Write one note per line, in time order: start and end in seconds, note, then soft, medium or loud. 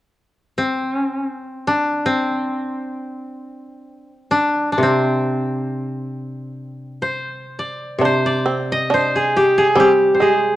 0.58 2.05 C4 medium
1.67 4.10 D4 medium
2.06 4.66 C4 medium
4.31 4.72 D4 medium
4.72 7.15 D4 soft
4.78 7.98 C3 soft
4.83 7.43 C4 medium
7.02 8.05 C5 medium
7.59 8.26 D5 soft
7.99 10.56 C3 soft
7.99 8.45 D4 medium
8.05 8.93 C5 medium
8.26 8.78 D5 medium
8.46 8.90 C4 soft
8.72 10.27 D#5 medium
8.90 9.75 D4 medium
8.90 10.14 C5 medium
9.16 9.42 G#4 medium
9.36 9.64 G4 medium
9.58 9.86 G#4 medium
9.75 10.56 G3 soft
9.75 10.19 C4 medium
9.80 10.28 G4 medium
10.14 10.56 C5 soft
10.20 10.56 G#3 medium
10.20 10.56 G#4 soft